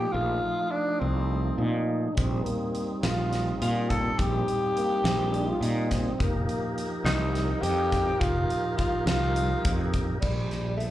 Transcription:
Already playing: tonewheel organ F3 A3 D#4, tenor saxophone G4
0.12 fretless electric bass A#1, tenor saxophone F4
0.71 tenor saxophone D4
0.99 fretless electric bass C2, tenor saxophone C4
1.58 fretless electric bass A#2, trombone D#4
2.15 fretless electric bass A#1, tonewheel organ G3 C4 D#4, trombone C4, kick, closed hi-hat
2.46 trombone A#3, closed hi-hat
2.75 closed hi-hat
3.03 fretless electric bass A#1, tenor saxophone F4, snare, closed hi-hat
3.33 snare, closed hi-hat
3.62 fretless electric bass A#2, tenor saxophone F4, closed hi-hat
3.90 tenor saxophone A4, kick, closed hi-hat
4.19 fretless electric bass A#1, tenor saxophone G4, kick, closed hi-hat
4.48 closed hi-hat
4.77 trombone A#3, closed hi-hat
5.04 fretless electric bass A#1, trombone C4, snare, closed hi-hat
5.34 trombone D4, closed hi-hat
5.50 trombone F4
5.61 fretless electric bass A#2, trombone D#4, closed hi-hat
5.91 trombone C4, kick, snare, closed hi-hat
6.18 fretless electric bass F1, tonewheel organ F3 D#4 G4 A#4, kick, closed hi-hat
6.23 trombone A#3
6.49 closed hi-hat
6.78 closed hi-hat
7.04 fretless electric bass C2, tenor saxophone D#4, snare, closed hi-hat
7.35 snare, closed hi-hat
7.62 fretless electric bass F2, tenor saxophone G4, closed hi-hat
7.92 kick, snare, closed hi-hat
8.20 fretless electric bass F1, tenor saxophone F4, kick, closed hi-hat
8.50 closed hi-hat
8.77 tenor saxophone F4, kick, closed hi-hat
9.06 fretless electric bass C2, tenor saxophone F4, snare, closed hi-hat
9.36 closed hi-hat
9.65 fretless electric bass F2, kick, closed hi-hat
9.94 kick, closed hi-hat
10.21 fretless electric bass A#1, tenor saxophone G3, kick, crash
10.51 snare, closed hi-hat
10.77 tenor saxophone A3, closed hi-hat

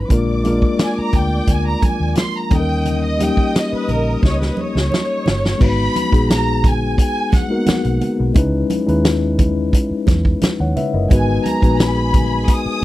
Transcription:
0.00 string section B4 B5
0.09 fingered electric bass A#1, tine electric piano G#3 A#3 D4 F4 A#4, string section D5 D6, kick, closed hi-hat, low conga
0.44 tine electric piano G#3 A#3 D4 F4 A#4, closed hi-hat, muted conga, high conga
0.62 kick
0.79 violin section G#5, snare, closed hi-hat, muted conga
0.98 violin section A#5, muted fingered electric bass stroke
1.12 fingered electric bass D2, violin section G5, kick, closed hi-hat, low conga
1.47 fingered electric bass D2, violin section G#5, kick, closed hi-hat, muted conga
1.67 violin section A#5
1.82 violin section G#5, kick, closed hi-hat, muted conga, high conga
2.00 fingered electric bass D#2
2.15 violin section C6, snare, closed hi-hat, high conga
2.36 violin section A#5
2.50 fingered electric bass D#2, tine electric piano G3 A#3 C#4 D#4 A4, string section D#5 D#6, violin section G5, kick, closed hi-hat, muted conga, low conga
2.60 tine electric piano A#4
2.85 closed hi-hat, low conga
3.04 violin section D#5
3.17 tine electric piano G3 A#3 C#4 D#4 G4, closed hi-hat, high conga
3.22 violin section G5
3.37 kick
3.56 violin section D#5, snare, closed hi-hat
3.73 violin section B4, muted fingered electric bass stroke
3.88 fingered electric bass A#1, violin section A#4, closed hi-hat, muted conga, low conga
4.23 fingered electric bass C#2, violin section C#5, kick, snare, muted conga
4.40 violin section B4, snare
4.57 violin section C#5, high conga
4.75 fingered electric bass C#2, snare
4.92 snare, high conga
5.26 fingered electric bass G1, snare, muted conga, low conga
5.45 snare
5.58 fingered electric bass G#1, tine electric piano G#3 B3 D#4 F#4 B4, kick, crash, muted conga, low conga
5.64 violin section B5
5.96 closed hi-hat, high conga
6.10 fingered electric bass A#1, tine electric piano G#3 B3 D#4 F#4 G#4, kick
6.14 closed hi-hat
6.30 violin section A#5, snare, closed hi-hat, muted conga
6.64 violin section G#5, kick, closed hi-hat, muted conga, high conga, low conga
6.98 violin section G#5, kick, closed hi-hat
7.32 violin section F#5, kick, snare, closed hi-hat, high conga
7.48 tine electric piano G#3 A#3 D#4 F#4 A#4
7.56 tine electric piano B3
7.66 muted fingered electric bass stroke, snare, closed hi-hat, muted conga, high conga
7.84 fingered electric bass B1, closed hi-hat
8.01 closed hi-hat, muted conga, low conga
8.20 fingered electric bass B1
8.34 fingered electric bass C#2, tine electric piano G#3 C#4 D#4 E4, kick, closed hi-hat, muted conga, low conga
8.38 tine electric piano B4
8.70 closed hi-hat, muted conga, high conga
8.86 fingered electric bass D#2, tine electric piano G#3 C#4 D#4 E4 B4, closed hi-hat
9.05 snare, closed hi-hat, muted conga
9.39 kick, closed hi-hat, high conga, low conga
9.73 kick, closed hi-hat, muted conga
9.91 muted fingered electric bass stroke
10.07 fingered electric bass E2, kick, snare, closed hi-hat, muted conga, high conga
10.25 kick
10.41 muted fingered electric bass stroke, snare, closed hi-hat, muted conga, high conga
10.60 fingered electric bass D#2, tine electric piano C#5 F#5
10.76 tine electric piano B4 E5, closed hi-hat, muted conga, low conga
10.94 fingered electric bass F#1, tine electric piano A#4 D#5
11.09 fingered electric bass G#1, tine electric piano G#3 B3 D#4 F#4, string section G#4 G#5, violin section G#5, kick, closed hi-hat, muted conga, low conga
11.13 tine electric piano B4
11.46 violin section A#5, closed hi-hat, high conga
11.61 fingered electric bass A#1, tine electric piano G#3 B3 D#4 F#4 B4, kick, closed hi-hat
11.80 violin section B5, snare, closed hi-hat, muted conga
12.14 kick, closed hi-hat, muted conga, high conga, low conga
12.48 violin section D#6, kick, closed hi-hat, muted conga
12.66 muted fingered electric bass stroke

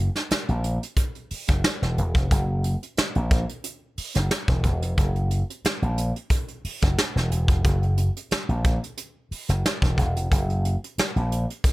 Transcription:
0.16 snare, closed hi-hat
0.30 muted slap bass stroke, snare, closed hi-hat
0.48 slap bass A#1, closed hi-hat
0.64 closed hi-hat
0.83 closed hi-hat
0.96 kick, closed hi-hat
1.15 closed hi-hat
1.30 muted slap bass stroke, open hi-hat
1.48 slap bass F#1, kick, snare, closed hi-hat
1.64 snare, closed hi-hat
1.82 slap bass E1, snare, closed hi-hat
1.98 slap bass E1, closed hi-hat
2.15 slap bass F1, kick, closed hi-hat
2.31 slap bass F#1, kick, closed hi-hat
2.64 closed hi-hat
2.83 closed hi-hat
2.97 muted slap bass stroke, snare, closed hi-hat
3.15 slap bass A#1, closed hi-hat
3.31 kick, closed hi-hat
3.49 closed hi-hat
3.64 closed hi-hat
3.97 muted slap bass stroke, open hi-hat
4.15 slap bass F#1, snare, closed hi-hat
4.31 snare, closed hi-hat
4.48 slap bass E1, kick, snare, closed hi-hat
4.64 slap bass E1, kick, closed hi-hat
4.82 slap bass F1, closed hi-hat
4.98 slap bass F#1, kick, closed hi-hat
5.15 closed hi-hat
5.30 closed hi-hat
5.50 closed hi-hat
5.64 muted slap bass stroke, snare, closed hi-hat
5.82 slap bass A#1, closed hi-hat
5.98 closed hi-hat
6.16 closed hi-hat
6.30 kick, closed hi-hat
6.48 closed hi-hat
6.64 muted slap bass stroke, open hi-hat
6.82 slap bass F#1, kick, snare, closed hi-hat
6.98 snare, closed hi-hat
7.16 slap bass E1, snare, closed hi-hat
7.30 slap bass E1, closed hi-hat
7.48 slap bass F1, kick, closed hi-hat
7.65 slap bass F#1, kick, closed hi-hat
7.83 closed hi-hat
7.97 closed hi-hat
8.16 closed hi-hat
8.31 muted slap bass stroke, snare, closed hi-hat
8.49 slap bass A#1, closed hi-hat
8.64 kick, closed hi-hat
8.83 closed hi-hat
8.97 closed hi-hat
9.31 muted slap bass stroke, open hi-hat
9.49 slap bass F#1, snare, closed hi-hat
9.66 snare, closed hi-hat
9.82 slap bass E1, kick, snare, closed hi-hat
9.98 slap bass E1, kick, closed hi-hat
10.16 slap bass F1, closed hi-hat
10.32 slap bass F#1, kick, closed hi-hat
10.50 closed hi-hat
10.65 closed hi-hat
10.84 closed hi-hat
10.98 muted slap bass stroke, snare, closed hi-hat
11.16 slap bass A#1, closed hi-hat
11.32 closed hi-hat
11.50 closed hi-hat
11.64 kick, closed hi-hat

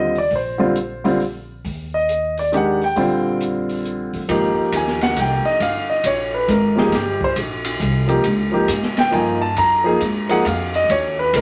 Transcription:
Already playing: upright bass D#2, grand piano D3 G3 C4 F4 D#5
0.15 grand piano D5, open hi-hat
0.31 upright bass A#1, kick, open hi-hat
0.36 grand piano C5
0.58 grand piano D3 G3 C4 F4
0.76 closed hi-hat
1.04 grand piano D3 G3 C4 F4, open hi-hat
1.20 open hi-hat
1.65 upright bass D#2, kick, open hi-hat
1.94 grand piano D#5
2.09 closed hi-hat
2.37 grand piano D5, open hi-hat
2.52 grand piano D#3 G#3 D4 G4, closed hi-hat
2.57 grand piano F#5
2.82 grand piano G5, open hi-hat
2.96 upright bass A#1, grand piano D3 G3 C4 F4, kick, open hi-hat
3.40 closed hi-hat
3.69 open hi-hat
3.85 closed hi-hat
4.13 upright bass A1, open hi-hat
4.28 upright bass G#1, grand piano F3 A#3 D#4 G4, kick, ride
4.57 muted upright bass stroke
4.72 upright bass D#2, grand piano G#5, kick, hi-hat pedal, ride
4.88 snare
5.01 grand piano F#5, snare, ride
5.16 upright bass C2, grand piano G5, kick, hi-hat pedal, ride
5.45 grand piano D#5, muted upright bass stroke, ride
5.60 upright bass G1, grand piano F5, kick, ride
5.90 grand piano D#5
6.04 upright bass A#1, grand piano C#5, kick, ride
6.34 grand piano B4
6.48 upright bass G#1, grand piano A#4, kick, hi-hat pedal, ride
6.76 grand piano F3 A#3 D#4 G4 G#4, snare
6.92 upright bass G1, grand piano G4, kick, snare, ride
7.21 grand piano C5, kick
7.36 upright bass A#1, kick, hi-hat pedal, ride
7.64 ride
7.80 upright bass C2, kick, hi-hat pedal
8.07 grand piano F3 A#3 D#4 G4, ride
8.23 upright bass C#2, kick, ride
8.52 grand piano F3 A#3 D#4 G4
8.68 upright bass G#2, kick, hi-hat pedal, ride
8.83 snare
8.97 grand piano G5, snare, ride
9.11 upright bass G2, grand piano F3 A#3 D#4 F4 G#5, kick, ride
9.42 grand piano A5
9.56 upright bass F#2, grand piano A#5, kick, ride
9.84 grand piano F3 A#3 D#4 G#4
10.00 upright bass G#2, kick, hi-hat pedal, ride
10.29 grand piano F3 A#3 D#4 G#4 F#5, ride
10.45 upright bass F2, grand piano F5, kick, hi-hat pedal, ride
10.74 grand piano D#5, ride
10.89 upright bass D#2, grand piano C#5, kick, ride
11.19 grand piano B4
11.33 upright bass C#2, grand piano A#4, kick, hi-hat pedal, ride

